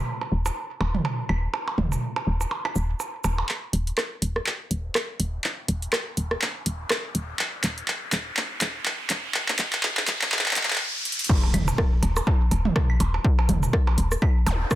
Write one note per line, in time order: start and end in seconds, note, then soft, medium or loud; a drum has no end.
0.21 percussion blips soft
0.32 0.50 D#1 medium
0.46 percussion blips medium
0.46 shaker soft
0.81 0.99 D#1 medium
0.81 percussion blips soft
0.94 mid tom medium
1.05 percussion blips medium
1.29 1.47 D#1 medium
1.29 percussion blips soft
1.29 claves medium
1.54 percussion blips medium
1.68 percussion blips soft
1.78 1.96 D#1 loud
1.78 mid tom medium
1.92 percussion blips soft
1.92 shaker soft
2.16 percussion blips medium
2.27 2.45 D#1 medium
2.41 percussion blips soft
2.41 shaker soft
2.51 percussion blips soft
2.65 percussion blips medium
2.65 claves medium
2.76 2.94 D#1 loud
2.76 shaker soft
3.00 percussion blips soft
3.00 shaker soft
3.24 3.43 D#1 medium
3.24 percussion blips medium
3.24 shaker soft
3.38 percussion blips soft
3.49 clap soft
3.49 riser medium
3.73 3.91 D#1 loud
3.73 closed hi-hat medium
3.87 closed hi-hat soft
3.98 cross-stick medium
3.98 clap medium
4.22 4.40 D#1 medium
4.22 closed hi-hat medium
4.36 cross-stick medium
4.46 clap medium
4.71 4.89 D#1 medium
4.71 closed hi-hat medium
4.95 cross-stick loud
4.95 clap medium
5.20 5.38 D#1 medium
5.20 closed hi-hat medium
5.44 clap medium
5.68 5.87 D#1 loud
5.68 closed hi-hat loud
5.82 closed hi-hat soft
5.93 cross-stick loud
5.93 clap medium
6.17 6.35 D#1 medium
6.17 closed hi-hat loud
6.31 cross-stick medium
6.42 clap medium
6.66 6.84 D#1 medium
6.66 closed hi-hat medium
6.90 cross-stick loud
6.90 clap medium
7.15 7.33 D#1 medium
7.15 closed hi-hat medium
7.39 clap medium
7.64 7.82 D#1 loud
7.64 clap medium
7.64 closed hi-hat loud
7.78 closed hi-hat soft
7.88 clap medium
8.12 8.30 D#1 medium
8.12 clap medium
8.12 closed hi-hat loud
8.37 clap medium
8.61 8.79 D#1 medium
8.61 clap medium
8.61 closed hi-hat loud
8.86 clap medium
9.10 9.28 D#1 medium
9.10 clap medium
9.10 closed hi-hat loud
9.34 clap medium
9.48 clap medium
9.59 9.77 D#1 loud
9.59 clap loud
9.59 closed hi-hat loud
9.73 clap medium
9.73 closed hi-hat soft
9.83 clap loud
9.97 clap medium
10.07 10.26 D#1 medium
10.07 clap loud
10.07 closed hi-hat loud
10.21 clap medium
10.32 clap loud
10.39 clap medium
10.46 clap medium
10.51 clap medium
10.56 10.74 D#1 medium
10.56 clap loud
10.56 closed hi-hat loud
10.63 clap medium
10.70 clap medium
10.76 clap medium
11.05 closed hi-hat medium
11.12 closed hi-hat medium
11.19 closed hi-hat medium
11.24 closed hi-hat medium
11.29 kick loud
11.29 crash loud
11.29 impact medium
11.29 percussion blips soft
11.43 percussion blips soft
11.54 11.72 D#1 loud
11.54 closed hi-hat loud
11.54 mid tom loud
11.54 claves medium
11.68 percussion blips medium
11.68 shaker soft
11.78 kick loud
11.78 cross-stick loud
12.03 12.21 D#1 medium
12.03 closed hi-hat medium
12.03 percussion blips soft
12.17 cross-stick medium
12.17 percussion blips soft
12.17 shaker soft
12.27 kick loud
12.27 percussion blips medium
12.51 12.69 D#1 medium
12.51 closed hi-hat loud
12.51 percussion blips soft
12.65 mid tom medium
12.76 kick loud
12.76 cross-stick loud
12.76 percussion blips medium
12.90 claves medium
13.00 13.18 D#1 medium
13.00 closed hi-hat medium
13.00 percussion blips soft
13.14 percussion blips soft
13.24 kick loud
13.39 percussion blips medium
13.49 13.67 D#1 loud
13.49 closed hi-hat loud
13.49 mid tom loud
13.63 percussion blips soft
13.63 shaker soft
13.73 kick loud
13.73 cross-stick loud
13.87 percussion blips medium
13.87 percussion blips soft
13.98 14.16 D#1 medium
13.98 closed hi-hat medium
14.12 cross-stick medium
14.12 shaker soft
14.22 kick loud
14.22 percussion blips soft
14.22 claves medium
14.46 14.65 D#1 medium
14.46 closed hi-hat loud
14.46 zap medium
14.46 percussion blips medium
14.71 kick loud
14.71 cross-stick loud
14.71 percussion blips soft
14.71 shaker soft